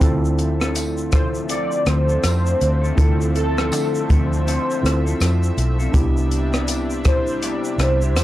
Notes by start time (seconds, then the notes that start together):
0.00 D2 D3 F3 A3 C4 E4 F4 A4 E5, kick, closed hi-hat, shaker
0.25 shaker
0.39 closed hi-hat, shaker
0.60 D3 C4 F4 A4, cross-stick, shaker
0.75 closed hi-hat, tambourine, shaker
0.97 shaker
1.11 D3 C4 F4 A4 C5, kick, cross-stick, closed hi-hat, shaker
1.35 shaker
1.48 D3 C4 F4 A4 D5, closed hi-hat, shaker
1.72 shaker
1.86 D2 C5, cross-stick, closed hi-hat, shaker
2.07 C4 F4 A4, shaker
2.24 F2 C5, cross-stick, closed hi-hat, tambourine, shaker
2.46 shaker
2.61 D2, closed hi-hat, shaker
2.82 C4 F4 A4, shaker
2.96 D2 D3 C4 E4 F4 A4, kick, closed hi-hat, shaker
3.00 A4
3.21 shaker
3.35 A4, closed hi-hat, shaker
3.57 D3 C4 F4 A4, cross-stick, shaker
3.72 D3, closed hi-hat, tambourine, shaker
3.95 shaker
4.09 D2 D3 C4 F4 A4 C5, kick, closed hi-hat, shaker
4.33 shaker
4.45 D3 C4 F4 A4, closed hi-hat, shaker
4.71 shaker
4.82 D2 C4 E4 F4 A4, closed hi-hat, shaker
4.86 cross-stick
5.05 C4 F4 A4, shaker
5.20 F2, cross-stick, closed hi-hat, tambourine, shaker
5.43 shaker
5.57 B1, closed hi-hat, shaker
5.79 C4 F4 A4, shaker
5.92 C2 C3 G3 B3 D4 E4 G4, kick, closed hi-hat, shaker
6.17 shaker
6.31 closed hi-hat, shaker
6.52 C3 B3 E4 G4, cross-stick, shaker
6.68 closed hi-hat, tambourine, shaker
6.90 shaker
7.04 C3 E4 G4 C5, kick, cross-stick, closed hi-hat, shaker
7.27 shaker
7.42 C3 B3 E4 G4 D5, closed hi-hat, shaker
7.64 shaker
7.78 C2 C5, cross-stick, closed hi-hat, shaker
8.01 E4 G4, shaker
8.16 E2 C5, cross-stick, closed hi-hat, tambourine, shaker